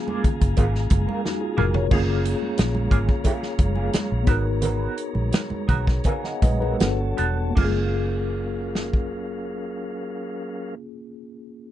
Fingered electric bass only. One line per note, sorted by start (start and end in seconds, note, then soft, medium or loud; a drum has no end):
0.25 muted fingered electric bass stroke soft
0.42 0.56 F#1 medium
0.58 0.86 G#1 loud
0.92 1.05 F#1 medium
1.60 1.87 F1 medium
1.91 2.33 F#1 loud
2.59 2.87 A#1 loud
2.91 3.05 G#1 medium
3.59 3.88 F#1 medium
3.95 muted fingered electric bass stroke soft
4.12 4.26 A#1 medium
4.28 4.87 G#1 medium
5.15 5.30 A#1 medium
5.51 muted fingered electric bass stroke soft
5.69 6.00 B1 medium
6.43 6.74 A#1 medium
6.80 7.12 G1 medium
7.19 7.51 E1 medium
7.57 10.76 F#1 loud